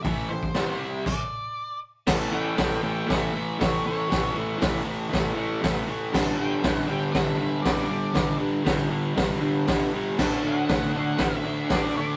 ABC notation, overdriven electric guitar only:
X:1
M:4/4
L:1/8
Q:1/4=118
K:Clyd
V:1 name="Overdriven electric guitar" clef=bass
[A,,E,A,] [A,,E,] [C,G,C]2 z4 | [K:Amix] [A,,E,A,] [A,,E,A,] [A,,E,A,] [A,,E,A,] [A,,E,A,] [A,,E,A,] [A,,E,A,] [A,,E,A,] | [A,,E,A,] [A,,E,A,] [A,,E,A,] [A,,E,A,] [A,,E,A,] [A,,E,A,] [A,,E,A,] [A,,E,A,] | [G,,D,G,] [G,,D,G,] [G,,D,G,] [G,,D,G,] [G,,D,G,] [G,,D,G,] [G,,D,G,] [G,,D,G,] |
[G,,D,G,] [G,,D,G,] [G,,D,G,] [G,,D,G,] [G,,D,G,] [G,,D,G,] [G,,D,G,] [G,,D,G,] | [D,A,D] [D,A,D] [D,A,D] [D,A,D] [D,A,D] [D,A,D] [D,A,D] [D,A,D] |]